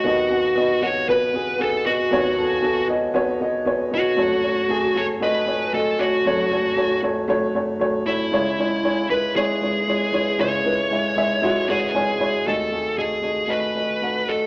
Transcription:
<<
  \new Staff \with { instrumentName = "Lead electric guitar" } { \time 4/4 \key fis \dorian \tempo 4 = 116 fis'4. cis''8 b'4 a'8 fis'8~ | fis'4. r2 fis'8~ | fis'4. cis''8 b'4 a'8 fis'8~ | fis'4. r2 e'8~ |
e'4. b'8 gis'2 | cis''2~ cis''8 gis'4. | a'4 gis'4 b'4. a'8 | }
  \new Staff \with { instrumentName = "Upright piano" } { \time 4/4 \key fis \dorian <b fis' dis''>8 <b fis' fis''>8 <b fis' dis''>8 <b fis' fis''>8 <b fis' b'>8 <b fis' gis'>8 <b fis' gis'>8 <b fis' dis''>8 | <b fis' cis''>8 <b fis' a'>8 <b fis' a'>8 <b fis' dis''>8 <b fis' cis''>8 <b fis' dis''>8 <b fis' cis''>8 <b fis' dis''>8 | <a fis' cis''>8 <a fis' cis''>8 <a fis' gis'>8 <a fis' a'>8 <a fis' dis''>8 <a fis' cis''>8 <a fis' dis''>8 <a fis' cis''>8 | <a fis' cis''>8 <a fis' cis''>8 <a fis' cis''>8 <a fis' cis''>8 <a fis' cis''>8 <a fis' cis''>8 <a fis' cis''>8 <a fis' cis''>8 |
<gis e' cis''>8 <gis e' cis''>8 <gis e' cis''>8 <gis e' b'>8 <gis e' cis''>8 <gis e' cis''>8 <gis e' cis''>8 <gis e' cis''>8 | <gis e' cis''>8 <gis e' b'>8 <gis e' e''>8 <gis e' cis'' e''>8 <gis e' fis' e''>8 <gis e' cis'' fis''>8 <gis e' cis'' gis''>8 <gis e' cis'' b''>8 | <a fis' dis''>8 <a fis' gis'>8 <a fis' dis''>8 <a fis' dis''>8 <a fis' dis''>8 <a fis' dis''>8 <a fis' fis''>8 <a fis' dis''>8 | }
  \new Staff \with { instrumentName = "Upright piano" } { \clef bass \time 4/4 \key fis \dorian <dis, dis>1 | <dis, dis>1 | <fis,, fis,>1 | <fis,, fis,>1 |
<cis, cis>1 | <cis, cis>1 | <dis, dis>1 | }
>>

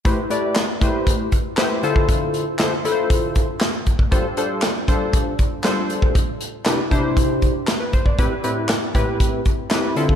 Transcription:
<<
  \new Staff \with { instrumentName = "Analog polysynth" } { \time 4/4 \key a \minor \tempo 4 = 118 << { r1 | r1 | r1 | r2. r16 b'16 c''16 d''16~ |
d''16 r2. r8. | } \\ { <a e' g' b' c''>8 <a e' g' b' d''>8 r8 <a e' g' b' c''>4 r8 <a e' g' b' c''>8 <d e' f' a' c''>8~ | <d e' f' a' c''>8 r8 <d e' f' a' c''>8 <d e' f' a' b' c''>4 r4. | <g d' f' a' c''>8 <g d' f' a' c''>8 r8 <g d' f' a' c''>4 r8 <g d' f' a' c''>4 | r4 <c d' e' g' b'>8 <c d' e' g' c''>4 r4. |
<a, c' e' g' b'>8 <a, c' e' g' b'>8 r8 <a, c' e' g' b'>4 r8 <a, c' e' g' b'>8 <d c' e' f' a'>8 | } >> }
  \new DrumStaff \with { instrumentName = "Drums" } \drummode { \time 4/4 <hh bd>8 hh8 <hc hh sn>8 <hh bd>8 <hh bd>8 <hh bd>8 <hc hh sn>8 hh16 bd16 | <hh bd>8 hh8 <hc hh sn>8 hh8 <hh bd>8 <hh bd>8 <hc hh sn>8 <hh bd>16 bd16 | <hh bd>8 hh8 <hc hh sn>8 <hh bd>8 <hh bd>8 <hh bd>8 <hc hh sn>8 hh16 bd16 | <hh bd>8 hh8 <hc hh sn>8 <hh bd>8 <hh bd>8 <hh bd>8 <hc hh sn>8 <hh bd>16 bd16 |
<hh bd>8 hh8 <hc hh sn>8 <hh bd>8 <hh bd>8 <hh bd>8 <hc hh sn>8 hh16 bd16 | }
>>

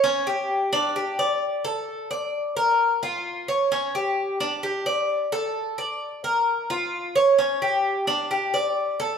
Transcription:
\new Staff \with { instrumentName = "Cuban tres" } { \time 4/4 \key g \dorian \tempo 4 = 131 cis'8 g'4 d'8 g'8 d''4 a'8~ | a'8 d''4 bes'4 f'4 cis''8 | cis'8 g'4 d'8 g'8 d''4 a'8~ | a'8 d''4 bes'4 f'4 cis''8 |
cis'8 g'4 d'8 g'8 d''4 a'8 | }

